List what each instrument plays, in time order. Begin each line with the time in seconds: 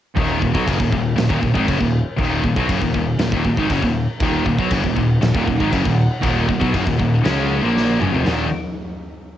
0.16 picked electric bass D#1, distorted electric guitar D#2 A#2 D#3, kick, crash
0.41 picked electric bass D#1, distorted electric guitar D#2 A#2, kick
0.54 picked electric bass B1, distorted electric guitar B2 F#3, kick
0.66 picked electric bass F#1, distorted electric guitar F#2 C#3, kick, crash
0.79 picked electric bass D#1, distorted electric guitar D#2 A#2, kick
0.92 picked electric bass D#1, distorted electric guitar D#2 A#2, kick
1.16 picked electric bass D#1, distorted electric guitar D#2 A#2, snare, crash
1.29 picked electric bass D#1, distorted electric guitar D#2 A#2, kick
1.41 picked electric bass D#1, distorted electric guitar D#2 A#2, kick
1.54 picked electric bass G#1, distorted electric guitar G#2 D#3, kick
1.66 picked electric bass F#1, distorted electric guitar F#2 C#3, kick, crash
1.79 picked electric bass D#1, distorted electric guitar D#2 A#2, kick
2.17 picked electric bass D#1, distorted electric guitar D#2 A#2 D#3, kick, crash
2.44 picked electric bass D#1, distorted electric guitar D#2 A#2, kick
2.56 picked electric bass B1, distorted electric guitar B2 F#3, kick
2.68 picked electric bass F#1, distorted electric guitar F#2 C#3, kick, crash
2.81 picked electric bass D#1, distorted electric guitar D#2 A#2, kick
2.94 picked electric bass D#1, distorted electric guitar D#2 A#2, kick
3.17 picked electric bass D#1, distorted electric guitar D#2 A#2, snare, crash
3.32 picked electric bass D#1, distorted electric guitar D#2 A#2, kick
3.45 picked electric bass D#1, distorted electric guitar D#2 A#2, kick
3.57 picked electric bass G#1, distorted electric guitar G#2 D#3, kick
3.70 picked electric bass F#1, distorted electric guitar F#2 C#3, kick, crash
3.83 picked electric bass D#1, distorted electric guitar D#2 A#2, kick
4.20 picked electric bass D#1, distorted electric guitar D#2 A#2 D#3, string section D#4 A#4 F#5, kick, crash
4.46 picked electric bass D#1, distorted electric guitar D#2 A#2, kick
4.59 picked electric bass B1, distorted electric guitar B2 F#3, kick
4.71 picked electric bass F#1, distorted electric guitar F#2 C#3, kick, crash
4.84 picked electric bass D#1, distorted electric guitar D#2 A#2, kick
4.96 picked electric bass D#1, distorted electric guitar D#2 A#2, kick
5.21 picked electric bass D#1, distorted electric guitar D#2 A#2, snare, crash
5.34 picked electric bass D#1, distorted electric guitar D#2 A#2, kick
5.47 picked electric bass D#1, distorted electric guitar D#2 A#2, kick
5.60 picked electric bass G#1, distorted electric guitar G#2 D#3, kick
5.72 picked electric bass F#1, distorted electric guitar F#2 C#3, kick, crash
5.85 picked electric bass D#1, distorted electric guitar D#2 A#2, kick
6.23 picked electric bass D#1, distorted electric guitar D#2 A#2 D#3, kick, crash
6.48 picked electric bass D#1, distorted electric guitar D#2 A#2, kick
6.60 picked electric bass B1, distorted electric guitar B2 F#3, kick
6.73 picked electric bass F#1, distorted electric guitar F#2 C#3, kick, crash
6.86 picked electric bass D#1, distorted electric guitar D#2 A#2, kick
6.98 picked electric bass D#1, distorted electric guitar D#2 A#2, kick
7.24 picked electric bass C#2, distorted electric guitar C#3 G#3 C#4, snare, crash
7.62 picked electric bass A#1, distorted electric guitar A#2 F3 A#3
7.77 snare
7.99 picked electric bass F#1, distorted electric guitar F#2 C#3, mid tom
8.12 picked electric bass F1, distorted electric guitar F2 C3, floor tom
8.26 picked electric bass D#1, distorted electric guitar D#2 A#2 D#3, string section D#4 A#4 F#5, snare, floor tom